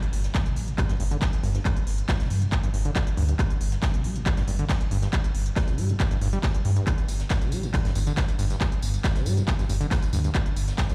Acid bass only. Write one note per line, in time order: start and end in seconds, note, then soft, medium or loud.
0.35 0.48 G1 medium
0.46 0.58 D3 medium
0.56 0.69 G3 medium
0.68 0.74 G2 medium
0.78 0.84 G2 medium
0.90 0.95 G2 loud
1.00 1.04 G2 loud
1.11 1.17 D3 loud
1.43 1.50 G2 loud
1.55 1.60 G2 medium
1.65 1.71 G2 medium
2.09 2.22 G1 medium
2.20 2.32 D3 medium
2.30 2.43 G3 medium
2.42 2.47 G2 medium
2.52 2.58 G2 medium
2.63 2.69 G2 loud
2.74 2.78 G2 loud
2.85 2.91 D3 loud
3.17 3.24 G2 loud
3.29 3.34 G2 medium
3.39 3.45 G2 medium
3.83 3.95 G1 medium
3.94 4.06 D3 medium
4.04 4.17 G3 medium
4.16 4.21 G2 medium
4.26 4.32 G2 medium
4.37 4.43 G2 loud
4.48 4.51 G2 loud
4.59 4.65 D3 loud
4.91 4.97 G2 loud
5.02 5.08 G2 medium
5.13 5.19 G2 medium
5.56 5.69 G1 medium
5.68 5.80 D3 medium
5.78 5.91 G3 medium
5.89 5.95 G2 medium
6.00 6.06 G2 medium
6.11 6.17 G2 loud
6.22 6.28 G2 loud
6.33 6.39 G3 loud
6.55 6.58 G2 medium
6.65 6.71 G2 medium
6.76 6.85 G2 medium
6.87 6.93 G2 medium
7.30 7.43 G1 medium
7.42 7.54 D3 medium
7.52 7.65 G3 medium
7.63 7.69 G2 medium
7.74 7.80 G2 medium
7.85 7.91 G2 loud
7.95 7.99 G2 loud
8.07 8.13 D3 loud
8.39 8.45 G2 medium
8.50 8.56 G2 medium
8.61 8.67 G2 medium
9.04 9.17 G1 medium
9.15 9.27 D3 medium
9.26 9.39 G3 medium
9.37 9.43 G2 medium
9.48 9.54 G2 medium
9.59 9.65 G2 loud
9.69 9.73 G2 loud
9.81 9.87 D3 loud
10.13 10.19 G2 loud
10.24 10.30 G2 medium
10.35 10.41 G2 medium
10.78 10.91 G1 medium
10.89 10.95 D3 medium